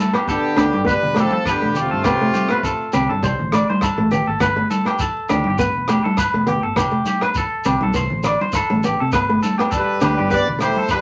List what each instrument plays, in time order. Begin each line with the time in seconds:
0.00 clean electric guitar A4, shekere
0.13 nylon-string guitar B3, clean electric guitar G4, cross-stick, low agogo
0.27 trombone D3, horn section B3 G4, clean electric guitar A4, kick, shekere
0.56 fingered electric bass D2, nylon-string guitar D4, clean electric guitar G4, cross-stick, closed hi-hat, low conga, low agogo, shekere
0.73 fingered electric bass G1, clean electric guitar G4, high conga
0.85 nylon-string guitar B3, horn section D4, clean electric guitar B4, kick, shekere
0.90 trombone G3, horn section B4
1.02 fingered electric bass E1, low conga
1.14 nylon-string guitar A3, horn section C4, clean electric guitar G4, cross-stick, closed hi-hat, low agogo, shekere
1.19 trombone F3, horn section A4
1.31 clean electric guitar A4, high conga
1.45 horn section B3 G4, clean electric guitar B4, kick, cross-stick, low agogo, shekere
1.51 trombone D3
1.62 fingered electric bass E1, nylon-string guitar A3
1.74 horn section A3, clean electric guitar G4, closed hi-hat, low conga, shekere
1.80 trombone C3, horn section F4
1.91 fingered electric bass G2, clean electric guitar A4
2.04 fingered electric bass F1, nylon-string guitar B3, clean electric guitar G4, kick, cross-stick, low agogo, shekere
2.21 nylon-string guitar A3
2.34 clean electric guitar G4, closed hi-hat, high conga, shekere
2.49 nylon-string guitar B3, clean electric guitar B4, cross-stick, low agogo
2.63 clean electric guitar A4, kick, shekere
2.92 fingered electric bass C2, nylon-string guitar C4, clean electric guitar G4, closed hi-hat, low conga, low agogo, shekere
3.09 fingered electric bass G2, clean electric guitar A4, high conga
3.23 fingered electric bass C2, nylon-string guitar G3, clean electric guitar C5, kick, shekere
3.39 fingered electric bass A1, low conga
3.52 nylon-string guitar A3, clean electric guitar D5, cross-stick, closed hi-hat, low agogo, shekere
3.70 clean electric guitar C5, high conga
3.81 clean electric guitar A4, kick, cross-stick, low agogo, shekere
3.98 fingered electric bass A1, nylon-string guitar A3
4.11 nylon-string guitar B3, clean electric guitar G4, closed hi-hat, low conga, shekere
4.27 fingered electric bass G#1, clean electric guitar A4
4.40 fingered electric bass G1, nylon-string guitar B3, clean electric guitar B4, kick, cross-stick, low agogo, shekere
4.56 nylon-string guitar A3
4.70 clean electric guitar A4, closed hi-hat, high conga, shekere
4.85 nylon-string guitar B3, clean electric guitar G4, cross-stick, low agogo
4.99 clean electric guitar A4, kick, shekere
5.29 fingered electric bass D2, nylon-string guitar D4, clean electric guitar G4, cross-stick, closed hi-hat, low conga, low agogo, shekere
5.44 fingered electric bass G1, clean electric guitar G4, high conga
5.58 nylon-string guitar B3, clean electric guitar B4, kick, shekere
5.75 fingered electric bass E1
5.88 nylon-string guitar A3, clean electric guitar G4, cross-stick, closed hi-hat, low agogo, shekere
6.04 clean electric guitar A4, high conga
6.17 clean electric guitar B4, kick, cross-stick, low agogo, shekere
6.34 fingered electric bass E1, nylon-string guitar A3
6.46 nylon-string guitar B3, clean electric guitar G4, closed hi-hat, low conga
6.63 fingered electric bass G1, clean electric guitar A4
6.76 fingered electric bass F1, nylon-string guitar B3, clean electric guitar G4, kick, cross-stick, low agogo, shekere
6.91 nylon-string guitar A3
7.06 clean electric guitar G4, closed hi-hat, high conga, shekere
7.21 nylon-string guitar B3, clean electric guitar B4, cross-stick, low agogo
7.35 clean electric guitar A4, kick, shekere
7.64 fingered electric bass C2, nylon-string guitar C4, clean electric guitar G4, closed hi-hat, low conga, low agogo, shekere
7.81 fingered electric bass B1, clean electric guitar A4, high conga
7.94 fingered electric bass C2, nylon-string guitar B3, clean electric guitar C5, kick, shekere
8.10 fingered electric bass A1, low conga
8.24 nylon-string guitar D3, clean electric guitar D5, cross-stick, closed hi-hat, low agogo, shekere
8.41 clean electric guitar C5, high conga
8.53 clean electric guitar A4, kick, cross-stick, low agogo, shekere
8.70 fingered electric bass A1, nylon-string guitar A3, high conga
8.83 nylon-string guitar B3, clean electric guitar G4, closed hi-hat, low conga, shekere
9.00 fingered electric bass C3, clean electric guitar A4
9.12 fingered electric bass G1, nylon-string guitar B3, clean electric guitar B4, kick, cross-stick, low agogo, shekere
9.29 nylon-string guitar A3
9.43 clean electric guitar A4, closed hi-hat, high conga, shekere
9.58 nylon-string guitar B3, clean electric guitar G4, cross-stick, low agogo
9.71 horn section D4, clean electric guitar A4, kick, shekere
9.76 trombone G3, horn section B4
10.01 fingered electric bass D2, nylon-string guitar D4, clean electric guitar G4, cross-stick, closed hi-hat, low conga, low agogo, shekere
10.17 fingered electric bass G1, clean electric guitar G4, high conga
10.30 nylon-string guitar B3, horn section G4, clean electric guitar B4, kick, shekere
10.35 trombone B3, horn section D5
10.47 fingered electric bass E1, low conga
10.59 horn section E4 C5, clean electric guitar G4, muted nylon-string guitar stroke, cross-stick, closed hi-hat, low agogo, shekere
10.64 trombone A3
10.76 clean electric guitar A4, high conga
10.89 trombone G3, horn section D4 B4, clean electric guitar B4, kick, cross-stick, low agogo, shekere